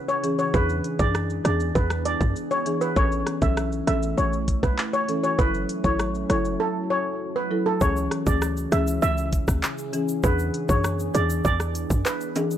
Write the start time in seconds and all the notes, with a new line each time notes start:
Already playing: C#3 C#4 E4 G#4
0.08 C#5, shaker
0.23 E3 C#4 G#4, closed hi-hat, shaker
0.39 C#5, shaker
0.54 E2 E3 B3 D4 G#4 B4, kick, shaker
0.69 shaker
0.84 closed hi-hat, shaker
0.99 F#2 E3 D4 G#4 D5, kick, shaker
1.15 cross-stick, shaker
1.30 shaker
1.45 E2 E3 D4 G#4 D5, cross-stick, closed hi-hat, shaker
1.60 shaker
1.75 E2 B4, kick, shaker
1.90 cross-stick, shaker
2.05 D5, closed hi-hat, shaker
2.21 F#2, kick, shaker
2.36 shaker
2.51 C#5, shaker
2.66 E3 D4 G#4, closed hi-hat, shaker
2.81 B4, shaker
2.96 A1 E3 A3 C#4 E4 A4 C#5, kick, shaker
3.12 shaker
3.27 cross-stick, closed hi-hat, shaker
3.42 B1 E3 C#4 A4 E5, kick, shaker
3.57 cross-stick, shaker
3.72 shaker
3.87 A1 E3 C#4 A4 E5, cross-stick, closed hi-hat, shaker
4.03 shaker
4.18 A1 C#5, shaker
4.33 shaker
4.48 kick, closed hi-hat, shaker
4.63 B1 B4, kick, cross-stick, shaker
4.78 clap, shaker
4.93 C#5, shaker
5.08 E3 C#4 A4, closed hi-hat, shaker
5.24 C#5, shaker
5.38 F#1 F#3 E4 A4 B4, kick, shaker
5.54 shaker
5.69 closed hi-hat, shaker
5.84 G#1 F#3 E4 A4 C#5, kick, shaker
5.99 cross-stick, shaker
6.15 shaker
6.29 F#1 F#3 E4 A4 C#5, cross-stick, closed hi-hat, shaker
6.45 shaker
6.60 A4
6.90 C#5
7.36 B4
7.51 F#3 E4 A4
7.66 A4
7.81 C#2 C#3 E3 C#4 E4 G#4 C#5, kick, shaker
7.97 shaker
8.11 cross-stick, closed hi-hat, shaker
8.26 D2 E3 C#4 G#4 D5, kick, shaker
8.42 cross-stick, shaker
8.57 shaker
8.72 C#2 E3 C#4 G#4 E5, cross-stick, closed hi-hat, shaker
8.87 shaker
9.02 C#2 E5, shaker
9.18 shaker
9.33 kick, closed hi-hat, shaker
9.48 D2, kick, cross-stick, shaker
9.63 clap, shaker
9.78 shaker
9.93 E3 C#4 G#4, closed hi-hat, shaker
10.08 shaker
10.23 E2 E3 B3 D4 G#4 B4, kick, shaker
10.39 shaker
10.54 closed hi-hat, shaker
10.69 F#2 E3 D4 G#4 C#5, kick, shaker
10.84 cross-stick, shaker
11.00 shaker
11.14 E2 E3 D4 G#4 D5, closed hi-hat, shaker
11.30 shaker
11.45 E2 D5, kick, shaker
11.60 cross-stick, shaker
11.75 closed hi-hat, shaker
11.90 F#2, kick, shaker
12.06 B4, clap, shaker
12.21 shaker
12.36 E3 D4 G#4, closed hi-hat, high timbale, shaker
12.51 shaker